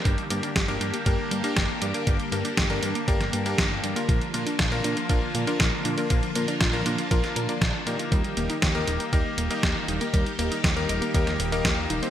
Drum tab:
HH |xxxxxxxxx-xxx-xx|xxxxxxxxxxxxx-xx|xxxxxxxxx-xxx-xx|xxxxxxxxxxxxx-xx|
SD |----o-------o---|----o----o--o---|----o-------o---|----o----o--o---|
BD |o---o---o---o---|o---o---o---o---|o---o---o---o---|o---o---o---o---|

HH |xxxxxxxxx-xxx-xx|xxxxxxxxxxxxx-xx|
SD |----o-------o---|----o----o--o---|
BD |o---o---o---o---|o---o---o---o---|